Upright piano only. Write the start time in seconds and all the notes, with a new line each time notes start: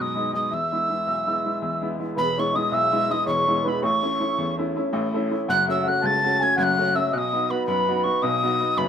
Already playing: F#2 B2 G#3 B3 D#4
0.15 G#3 B3 D#4
0.33 G#3 B3 D#4
0.52 E2
0.71 G#3 B3 E4
0.89 G#3 B3 E4
1.06 B1
1.26 G#3 B3 E4
1.45 G#3 B3 E4
1.62 E2
1.81 G#3 B3 E4
1.99 G#3 B3 E4
2.17 E1 E2
2.38 G#3 B3 E4
2.55 G#3 B3 E4
2.72 B1
2.92 G#3 B3 E4
3.10 G#3 B3 E4
3.26 E1 E2
3.47 G#3 B3 E4
3.65 G#3 B3 E4
3.82 A1 A2
4.02 A3 C#4 E4
4.20 A3 C#4 E4
4.38 E2
4.57 A3 C#4 E4
4.76 A3 C#4 E4
4.93 A1 A2
5.13 A3 C#4 E4
5.30 A3 C#4 E4
5.48 F#1 F#2
5.68 A3 C#4 F#4
5.86 A3 C#4 F#4
6.03 C#2
6.24 A3 C#4 F#4
6.41 A3 C#4 F#4
6.58 F#1 F#2
6.79 A3 C#4 F#4
6.95 A3 C#4 F#4
7.13 B1 B2
7.33 B3 D#4 F#4
7.50 B3 D#4 F#4
7.68 F#2
7.88 B3 D#4 F#4
8.04 B3 D#4 F#4
8.23 B1 B2
8.43 B3 D#4 F#4
8.60 B3 D#4 F#4
8.77 F#1 F#2